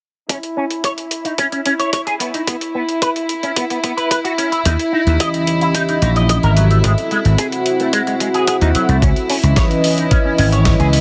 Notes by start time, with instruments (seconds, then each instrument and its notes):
0.29 clean electric guitar C#4, string section E4, kick, closed hi-hat
0.43 closed hi-hat
0.57 clean electric guitar C#4
0.71 closed hi-hat
0.84 clean electric guitar C#5, kick, closed hi-hat
0.98 closed hi-hat
1.11 closed hi-hat
1.25 clean electric guitar D#4, closed hi-hat
1.38 clean electric guitar C#4, kick, closed hi-hat
1.52 clean electric guitar C#4, closed hi-hat
1.66 clean electric guitar C#4, closed hi-hat
1.79 clean electric guitar C#5, closed hi-hat
1.93 clean electric guitar C#5, kick, closed hi-hat
2.07 clean electric guitar G#4, closed hi-hat
2.20 clean electric guitar B3, closed hi-hat
2.34 clean electric guitar D#4, closed hi-hat
2.47 clean electric guitar B3, kick, closed hi-hat
2.61 closed hi-hat
2.75 clean electric guitar B3
2.89 closed hi-hat
3.02 clean electric guitar B4, kick, closed hi-hat
3.16 closed hi-hat
3.29 closed hi-hat
3.43 clean electric guitar C#4, closed hi-hat
3.56 clean electric guitar B3, kick, closed hi-hat
3.70 clean electric guitar B3, closed hi-hat
3.84 clean electric guitar B3, kick, closed hi-hat
3.97 clean electric guitar B4, closed hi-hat
4.11 clean electric guitar B4, kick, closed hi-hat
4.25 clean electric guitar F#4, closed hi-hat
4.38 clean electric guitar C#4, closed hi-hat
4.52 clean electric guitar E4, closed hi-hat
4.65 slap bass D#2, clean electric guitar D#4, kick, closed hi-hat
4.79 closed hi-hat
4.93 clean electric guitar D#4
5.06 slap bass D#2, analog synth pad E3 C#4 G4 D#5, closed hi-hat
5.20 clean electric guitar D#5, kick, closed hi-hat
5.34 closed hi-hat
5.47 closed hi-hat
5.61 clean electric guitar E4, closed hi-hat
5.75 clean electric guitar D#4, kick, closed hi-hat
5.89 clean electric guitar D#4, closed hi-hat
6.02 slap bass A#1, analog synth pad E3 C#4 G4 D#5, clean electric guitar D#4, closed hi-hat
6.16 clean electric guitar D#5, closed hi-hat
6.29 clean electric guitar D#5, kick, closed hi-hat
6.43 slap bass G#1, analog synth pad C4 F#4 A4 E5, clean electric guitar A#4, closed hi-hat
6.57 clean electric guitar F#3, closed hi-hat
6.70 clean electric guitar A3, analog synth pad C4 F#4 A4 E5, closed hi-hat
6.84 slap bass G#1, clean electric guitar G#3, kick, closed hi-hat
6.98 closed hi-hat
7.11 clean electric guitar G#3, closed hi-hat
7.24 slap bass G#1, analog synth pad C4 F#4 F#5, closed hi-hat
7.38 clean electric guitar G#4, kick, closed hi-hat
7.52 closed hi-hat
7.66 closed hi-hat
7.80 clean electric guitar A3, closed hi-hat
7.93 clean electric guitar G#3, kick, closed hi-hat
8.07 clean electric guitar G#3, closed hi-hat
8.20 clean electric guitar G#3, kick, closed hi-hat
8.34 clean electric guitar G#4, closed hi-hat
8.47 clean electric guitar G#4, kick, closed hi-hat
8.61 slap bass D#2, clean electric guitar D#4, closed hi-hat
8.75 clean electric guitar F#3, analog synth pad C4 F#4 A4 E5, muted slap bass stroke, closed hi-hat
8.89 slap bass C2, clean electric guitar A3, closed hi-hat
9.02 slap bass C#2, clean electric guitar C#4, string section E4, kick, closed hi-hat
9.16 closed hi-hat
9.29 clean electric guitar C#4, open hi-hat
9.42 slap bass C#2, analog synth pad E3 C#4 B4 D#5, closed hi-hat
9.56 clean electric guitar C#5, kick, snare, closed hi-hat
9.71 closed hi-hat
9.84 open hi-hat
9.98 clean electric guitar D#4, closed hi-hat
10.11 clean electric guitar C#4, kick, closed hi-hat
10.25 clean electric guitar C#4
10.38 slap bass G#1, analog synth pad E3 C#4 B4 D#5, clean electric guitar C#4, open hi-hat
10.52 clean electric guitar C#5, closed hi-hat
10.65 clean electric guitar C#5, kick, snare, closed hi-hat
10.79 slap bass C#2, analog synth pad C#4 E4 B4 D#5, clean electric guitar G#4, closed hi-hat
10.93 clean electric guitar B3, open hi-hat